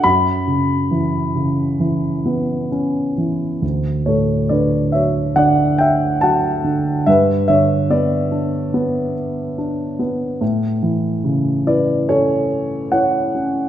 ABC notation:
X:1
M:4/4
L:1/8
Q:1/4=71
K:F#phr
V:1 name="Grand piano"
b6 z2 | [K:D] z [Ac] [Bd] [ce] [df] [eg] [fa]2 | [Be] [ce] [Bd]3 z3 | z3 [Bd] [Ac]2 [cf]2 |]
V:2 name="Grand piano" clef=bass
F,, C, E, C, E, B, C E, | [K:D] D,, A,, D, F, D,2 F, D, | G,, D, B, D B,2 D B, | A,, E, C, E C2 E C |]